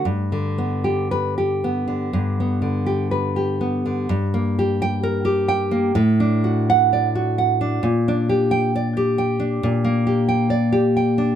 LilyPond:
\new Staff \with { instrumentName = "Nylon-string guitar" } { \time 4/4 \key g \major \tempo 4 = 64 << { r4 b'8 r2 r8 | \key g \minor r8. g''8 r4. fis''8 r8. | r8. g''8 r2 r8. | } \\ { g,16 d16 b16 g'8 g'16 b16 d16 g,16 b16 d16 g'16 b'16 g'16 b16 d16 | g,16 bes16 g'8 bes'16 g'16 g''16 bes16 a,16 d'16 fis'8 d''16 fis'16 fis''16 d'16 | bes,16 d'16 g'8 d''16 g'16 g''16 d'16 bes,16 bes16 g'16 g''16 d''16 g'16 g''16 d'16 | } >> }